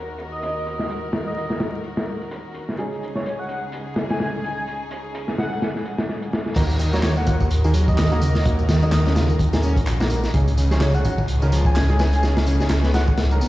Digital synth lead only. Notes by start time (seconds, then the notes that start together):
0.32 D#5
1.26 D#5
1.37 D#5
3.16 C#5
3.25 C#5
3.39 F#5
4.10 G#5
4.44 G#5
4.57 G#5
5.38 F#5
5.52 F#5
6.93 C#5
7.04 C#5
7.17 F#5
7.88 D#5
8.82 D#5
8.92 D#5
10.71 C#5
10.81 C#5
10.94 F#5
11.66 G#5
11.99 G#5
12.13 G#5
12.94 F#5
13.07 F#5